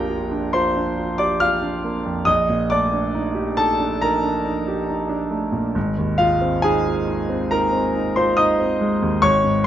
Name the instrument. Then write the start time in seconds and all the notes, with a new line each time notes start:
grand piano
Already playing: A#1 F2 A#3 D4 F4 G4 A#4 G5 A#5
0.09 F4
0.31 D4
0.53 F4 C5 C6
0.77 D4
0.97 F4
1.18 G4 D5 D6
1.40 F4 F5 F6
1.62 D4
1.84 A#3
2.05 F2
2.25 A#1 D#5 D#6
2.49 A#2
2.70 A3 D5 D6
2.93 D4
3.15 D#4
3.35 G4
3.57 D#4 A4 A5
3.80 D4
4.01 D#4 A#4 A#5
4.24 D4
4.45 D#4
4.68 G4
4.89 D#4
5.09 D4
5.30 A3
5.52 A#2
5.75 G#1
5.98 D#2
6.18 G#3 F4 F5
6.41 C4
6.62 D#4 G#4 G#5
6.86 F4
7.07 D#4
7.29 C4
7.51 D#4 A#4 A#5
7.72 C4
7.95 D#4
8.16 F4 C5 C6
8.37 D#4 D#5 D#6
8.60 C4
8.81 G#3
9.02 D#2
9.22 G#1 C#5 C#6
9.44 G#2